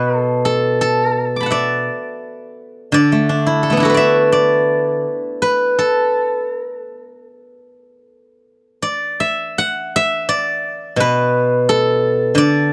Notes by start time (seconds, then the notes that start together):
Already playing: B2 B4 D5
0.18 A4
0.45 A4
0.81 A4
1.36 D6
1.41 A5 B5
1.46 F#5
1.51 D5 E5
2.92 D3 D5
3.12 A3
3.29 D4
3.46 E4
3.63 A4
3.70 A3 B3
3.77 D4 E4
3.83 F#4 A4
3.90 B4
3.94 D5 E5
4.32 D5
5.42 B4
5.79 A4
6.57 A#4
6.79 A4
7.02 A#4
7.23 A4
8.82 D5
9.20 E5
9.58 F#5
9.96 E5
10.29 D5
10.96 B2 B4
11.69 A4
12.35 D3 D5